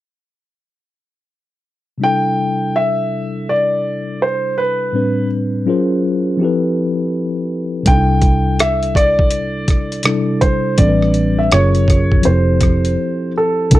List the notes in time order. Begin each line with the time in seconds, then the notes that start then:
1.98 C3 G3 D4
2.03 E4 A4 G5
2.76 E5
3.49 D5
4.22 C5
4.58 B4
4.93 A2 G3 C4 D4 B4
5.66 F#3 C#4 F4 G#4 A#4 C5
6.37 F3 C4 E4
6.41 G4 A4 B4
7.83 C2 C3 G3 D4, kick, closed hi-hat
7.87 D#4 A4 G5
7.95 E4
8.22 kick, closed hi-hat
8.59 E5, cross-stick, closed hi-hat
8.83 closed hi-hat
8.95 D5, kick, cross-stick, closed hi-hat
9.19 kick
9.31 closed hi-hat
9.68 kick, cross-stick, closed hi-hat
9.92 closed hi-hat
10.03 C3 G3 D4, cross-stick, closed hi-hat
10.07 E4 A4
10.41 C5, kick, closed hi-hat
10.78 A1 A2 G3 C4 D4 A4 D5, kick, closed hi-hat
10.88 B4
11.02 cross-stick
11.14 closed hi-hat
11.39 E5
11.51 F#1 F#3 C#4 F4 G#4 A#4 C#5, cross-stick, closed hi-hat
11.75 closed hi-hat
11.88 kick, cross-stick, closed hi-hat
12.12 kick
12.22 F3 C4 E4 C5, closed hi-hat
12.27 F1 G4 A4 C5
12.61 kick, cross-stick, closed hi-hat
12.85 closed hi-hat
13.38 A4
13.71 C2 C3 G3 D4 E4 A4, kick, closed hi-hat
13.75 A4